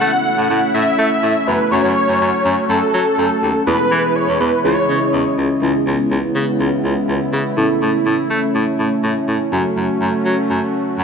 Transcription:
Already playing: A3 C#4 E4 A4 F#5
0.01 A3
0.38 A2
0.50 A2
0.74 A2 E5
0.99 A3
1.23 A2
1.47 F#2 C#4 E4 A4 B4
1.72 F#2 C#4 F#4 A4 C#5
1.84 F#2
2.08 F#2
2.21 F#2
2.45 F#2
2.69 F#2 A4
2.94 F#3
3.18 F#2
3.42 D#2
3.67 E2 E3 B3 E4 G#4 B4
3.91 E3
4.16 C#5
4.28 E2
4.40 E2 B4
4.64 C#2 C#3 C#4 E4 G#4 C#5 D#5
4.89 C#3
5.13 E2
5.38 C#2
5.62 C#2 C#3 G#3 B3 C#4 E4 G#4
5.86 C#2
6.11 C#2
6.35 C#3
6.60 C#2
6.84 C#2
7.08 C#2
7.33 C#3
7.57 A2 A3 C#4 E4 A4
7.82 A2
8.06 A2
8.30 A3
8.55 A2
8.79 A2
9.03 A2
9.28 A2
9.52 F#2 A3 C#4 F#4 A4
9.77 F#2
10.01 F#2
10.26 F#3
10.50 F#2
10.99 F#2

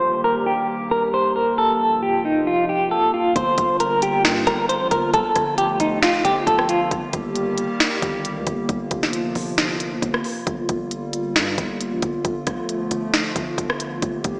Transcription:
Already playing: G2 D#3 G3 A#3 G4 C5
0.24 A#4
0.46 G4
0.91 A#4
1.14 C5
1.36 A#4
1.58 C3 F3 F4 A4
2.03 G4
2.25 D#4
2.47 F4
2.69 G4
2.91 A4
3.14 F4
3.36 G1 D3 G3 A#3 F4 C5, kick, closed hi-hat
3.58 G1, kick, closed hi-hat
3.80 A#4, closed hi-hat
4.02 G4, closed hi-hat
4.25 G2, finger snap, snare, closed hi-hat
4.47 G1 A#4, kick, closed hi-hat
4.69 C5, closed hi-hat
4.81 A#1
4.91 G1 A#4, kick, closed hi-hat
5.14 G1 F3 A3 A4, kick, closed hi-hat
5.36 G1, kick, cross-stick, closed hi-hat
5.58 G4, closed hi-hat
5.80 G1 D#4, closed hi-hat
6.02 F4, finger snap, snare, closed hi-hat
6.25 G1 G4, kick, closed hi-hat
6.47 G1 A4, kick, closed hi-hat
6.59 cross-stick
6.69 F4, closed hi-hat
6.91 G1 D#3 G3 A#3 G4, kick, closed hi-hat
7.13 G1, kick, closed hi-hat
7.36 closed hi-hat
7.58 closed hi-hat
7.80 finger snap, snare, closed hi-hat
8.02 G1, kick, closed hi-hat
8.25 closed hi-hat
8.36 D2
8.47 G1, kick, closed hi-hat
8.69 G1 C3 F3 F4, kick, closed hi-hat
8.91 G1, kick, closed hi-hat
9.03 snare
9.13 closed hi-hat
9.35 G1, open hi-hat
9.58 finger snap, snare, closed hi-hat
9.80 closed hi-hat
10.02 G1, kick, closed hi-hat
10.14 cross-stick
10.24 open hi-hat
10.47 G1 D3 G3, kick, closed hi-hat
10.69 G1, kick, closed hi-hat
10.91 closed hi-hat
11.13 closed hi-hat
11.36 G2, finger snap, snare, closed hi-hat
11.58 G1, kick, closed hi-hat
11.81 closed hi-hat
11.92 A#1
12.02 G1, kick, closed hi-hat
12.25 G1 F3 A3, kick, closed hi-hat
12.47 G1, kick, cross-stick, closed hi-hat
12.69 closed hi-hat
12.91 G1, closed hi-hat
13.14 finger snap, snare, closed hi-hat
13.36 G1, kick, closed hi-hat
13.58 G1, kick, closed hi-hat
13.70 cross-stick
13.80 closed hi-hat
14.02 G1 D#3 G3 A#3 G4, kick, closed hi-hat
14.24 G1, kick, closed hi-hat

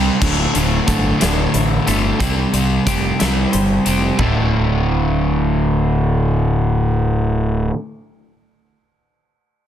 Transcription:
Already playing: C3 G3 C4
0.21 D1 D2 A2 D3, kick, crash
0.54 D1 D2 A2 D3, closed hi-hat
0.87 G1 D2 A2 D3 A3, kick, closed hi-hat
1.20 D1 D2 A2 D3, snare, closed hi-hat
1.54 A1 E4, closed hi-hat
1.86 G1 D2 A2 D3 A3, closed hi-hat
2.20 C2 C3 G3 C4, kick, closed hi-hat
2.53 C2 C3 G3 C4, closed hi-hat
2.87 F1 C3 G3 C4 G4, kick, closed hi-hat
3.19 C2 C3 G3 C4 E4, snare, closed hi-hat
3.53 G1 C5, closed hi-hat
3.85 F1 C3 G3 C4 G4, closed hi-hat
4.17 D1 D2 A2 D3 A3, kick, floor tom
4.21 D3 E4

